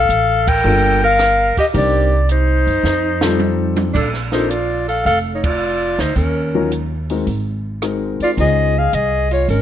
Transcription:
Already playing: A4 F5
0.09 A1, closed hi-hat
0.47 A#4 G5, kick, crash
0.64 G1 G3 A#3 D4 F4 A4
1.04 A#4 F5
1.19 cross-stick, snare, closed hi-hat
1.57 G4 D#5, muted upright bass stroke, kick, open hi-hat
1.73 C2 G3 C4 D4 D#4 G4 A#4 D5, kick, open hi-hat
2.29 D#4 C5, closed hi-hat
2.67 F#2, open hi-hat
2.83 F2, snare
3.21 G3 C4 D#4 F4 A4, snare
3.40 high tom
3.77 high tom
3.94 A#1 D4 A4, kick, crash
4.14 snare
4.32 A#3 C4 D4 D#4 F4 A4 C5, snare
4.50 F4 D5, closed hi-hat
4.88 A4 F5, open hi-hat
5.05 F1 A4 F5, kick, open hi-hat
5.34 D#4 C#5
5.44 F4 D5, kick, crash
5.98 D2 D#4 C5, snare, open hi-hat
6.16 D#2 C#4 A#4, kick, open hi-hat
6.55 F#3 C#4 D#4 F4 A#4
6.71 closed hi-hat
7.09 G#3 C4 D#4 F#4 A#4, open hi-hat
7.27 G#1, kick, open hi-hat
7.82 G#3 C4 D#4 F#4 A#4, cross-stick, closed hi-hat
8.20 F4 D5, muted upright bass stroke, open hi-hat
8.37 C#2 G#3 C#4 D#4 F4 G#4 C5 D#5, kick, open hi-hat
8.77 G#4 F5
8.93 C2 G#4 D#5, closed hi-hat
9.31 F4 C#5, open hi-hat
9.48 G#1 C#4 A#4, kick, open hi-hat

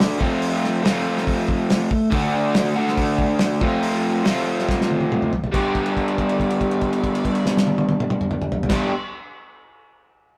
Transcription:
Already playing: D3 A3 D4 F#4
0.00 snare
0.19 F3 A3 C4 F4, kick
0.42 open hi-hat
0.64 snare
0.83 F3 A3 C4 F4, snare, open hi-hat
1.17 snare
1.27 kick, open hi-hat
1.48 kick
1.70 snare, open hi-hat
1.91 kick
2.10 D3 A3 D4, kick, open hi-hat
2.14 F#4
2.54 snare, open hi-hat
2.75 D3 A3 D4 F#4
2.88 snare
2.97 kick, open hi-hat
3.19 kick
3.39 snare, open hi-hat
3.61 F3 A3 C4 F4, kick
3.83 open hi-hat
4.24 F3 A3 C4 F4, snare, open hi-hat
4.59 snare
4.69 kick, snare
4.81 snare
4.91 high tom
5.01 high tom
5.12 mid tom
5.22 mid tom
5.33 floor tom
5.44 floor tom
5.52 G3 B3 D4, kick, crash
5.56 G4
5.75 kick, crash
5.86 crash
5.97 kick, crash
6.08 crash
6.18 kick, crash
6.29 crash
6.40 kick, crash
6.50 crash
6.61 kick, crash
6.71 crash
6.81 kick, crash
6.93 crash
7.04 kick, crash
7.15 crash
7.25 kick, crash
7.35 crash
7.46 snare
7.57 snare
7.67 high tom
7.78 high tom
7.89 high tom
8.00 mid tom
8.10 mid tom
8.21 mid tom
8.31 mid tom
8.42 mid tom
8.52 floor tom
8.63 floor tom
8.69 G3 B3 D4 G4, kick, snare, crash

